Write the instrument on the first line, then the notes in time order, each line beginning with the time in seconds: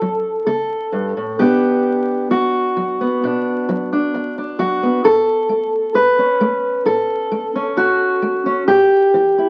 steel-string acoustic guitar
Already playing: F#2 C#4 A4
0.01 F#3
0.47 C#3 A4
0.92 G2
1.17 A2
1.39 B2 B3 D4 G4
2.31 F#2 F#4
2.77 F#3
3.01 B3
3.24 B2 D4
3.69 F#3
3.93 D4
4.14 F#2
4.38 D4
4.59 F#3 F#4
4.83 B3
5.04 A2 A4
5.49 A3
5.94 A2 B4
6.19 C#4
6.41 A3
6.85 A2 A4
7.31 A3
7.55 C#4
7.77 A2 F#4
8.22 A3
8.46 C#4
8.68 A2 G4
9.14 E3
9.38 E4